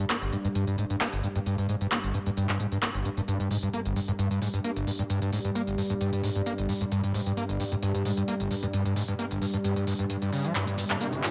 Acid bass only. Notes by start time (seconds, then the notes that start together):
0.10 A#3
0.22 G1
0.33 G2
0.45 G2
0.55 G2
0.67 G2
0.78 G#2
0.90 G2
1.01 A#3
1.13 G1
1.24 G2
1.36 G2
1.46 G2
1.58 G2
1.69 G#2
1.81 G2
1.92 A#3
2.04 G1
2.14 G2
2.26 G2
2.37 G2
2.49 G2
2.60 G#2
2.72 G2
2.83 A#3
2.95 G1
3.05 G2
3.17 G2
3.28 G2
3.40 G2
3.51 G#2
3.63 G2
3.73 A#3
3.85 G1
3.96 G2
4.08 G2
4.19 G2
4.31 G2
4.42 G#2
4.54 G2
4.64 A#3
4.76 G1
4.87 G2
4.99 G2
5.10 G2
5.22 G2
5.33 G#2
5.45 G2
5.55 A#3
5.67 G1
5.78 G2
5.90 G2
6.01 G2
6.13 G2
6.23 G#2
6.36 G2
6.46 A#3
6.58 G1
6.69 G2
6.81 G2
6.92 G2
7.04 G2
7.14 G#2
7.26 G2
7.37 A#3
7.49 G1
7.60 G2
7.72 G2
7.82 G2
7.95 G2
8.05 G#2
8.17 G2
8.28 A#3
8.40 G1
8.51 G2
8.63 G2
8.73 G2
8.85 G2
8.96 G#2
9.08 G2
9.19 A#3
9.31 G1
9.42 G2
9.54 G2
9.64 G2
9.76 G2
9.87 G2
9.99 G2
10.10 G2
10.22 G2
10.33 C#3
10.45 F3
10.55 G2
10.67 G2
10.78 G2
10.90 G2
11.01 A#3
11.13 G1
11.23 G2